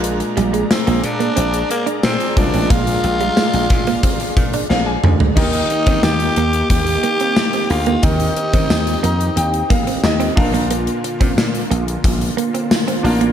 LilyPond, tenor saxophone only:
\new Staff \with { instrumentName = "Tenor saxophone" } { \time 4/4 \key ees \major \tempo 4 = 90 r4 c'8 d'4 bes8 c'8 d'8 | f'2. r4 | ees'4 g'4 g'4. f'8 | ees'2. r4 |
r1 | }